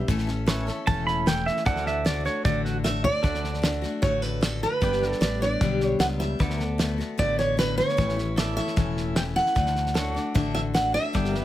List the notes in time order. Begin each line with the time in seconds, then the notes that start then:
Already playing: E5
0.08 A1 A2 E3 A3 C#4 A4, kick, snare
0.18 snare
0.27 A3 C#4 A4, snare
0.46 E3 A3 C#4 A4 B4 C#5 E5, snare, hi-hat pedal
0.67 A3 C#4 A4, snare
0.73 A4
0.87 E1 A2 E3 A3 C#4 A4 A5, kick, snare
1.07 B5, snare
1.26 E3 A3 C#4 A4 G5, snare, hi-hat pedal
1.46 E5, snare
1.57 snare
1.65 D2 D3 A3 D4 F#4 A4 D5 E5 F#5, kick, snare
1.76 snare
1.86 E5, snare
1.93 F#5
2.05 D3 A3 D4 F#4 D5, snare, hi-hat pedal
2.25 A3 D4 F#4 C#5, snare
2.45 A1 D3 A3 D4 F#4 D5, kick, snare
2.65 F#4, snare
2.84 D3 A3 D4 F#4 E5, snare, hi-hat pedal
3.04 D5, floor tom
3.23 D2 D3 A3 D4 F#4 A4 D5 F#5, kick, snare
3.34 snare
3.44 snare
3.54 snare
3.62 D3 A3 D4 F#4, snare, hi-hat pedal
3.82 A3 D4 F#4, snare
4.02 A1 D3 A3 D4 F#4 C#5, kick, snare
4.22 B4, snare
4.41 D3 A3 D4 F#4 A4, snare, hi-hat pedal
4.63 B4, snare
4.81 G1 G2 D3 G3 B3 D4 G4 B4 D5 G5, kick, snare
4.92 snare
5.01 G3 B3 D4 G4, snare
5.10 A4, snare
5.20 A1 G3 B3 D4 G4 D5, snare, hi-hat pedal
5.41 G3 B3 D4 G4 D5, snare
5.61 B1 G2 D3 G3 B3 D4 G4, kick, snare
5.80 snare
5.86 C#5
5.99 C#2 G3 B3 D4 G4 F#5, snare, hi-hat pedal
6.20 E5, snare
6.39 D2 D3 A3 B3 F#4 B4 D5 F#5, kick, snare
6.50 snare
6.59 A3 B3 F#4, snare
6.65 A4
6.78 D3 A3 B3 F#4, snare, hi-hat pedal
6.98 A3 B3 F#4, snare
7.18 A1 D3 A3 B3 F#4 D5, kick, snare
7.39 C#5, snare
7.57 D3 A3 B3 F#4 B4, snare, hi-hat pedal
7.78 C#5, snare
7.89 snare
7.97 A1 A2 E3 A3 C#4 E4, kick, snare
8.09 snare
8.17 A3 C#4 E4, snare
8.36 E3 A3 C#4 E4 A4 D5 E5, snare, hi-hat pedal
8.56 A3 C#4 E4 C#5 E5, snare
8.67 snare
8.76 E1 A2 E3 A3 C#4 E4, kick, snare
8.97 snare
9.16 E3 A3 C#4 E4 G5, snare, hi-hat pedal
9.36 F#5, snare
9.46 snare
9.55 D2 D3 A3 D4 F#4, kick, snare
9.66 snare
9.76 snare
9.86 snare
9.94 D3 A3 D4 F#4 A4 C#5 F#5, snare, hi-hat pedal
10.15 A3 D4 F#4 D5, snare
10.34 A1 D3 A3 D4 F#4 E5, kick, snare
10.55 E5, snare
10.74 D3 A3 D4 F#4 F#5, snare, hi-hat pedal
10.94 E5, snare
11.13 G1 G2 D3 G3 B3 D4 G4 A4 D5 G5, kick, snare
11.24 snare
11.33 G3 B3 D4 G4, snare
11.40 B4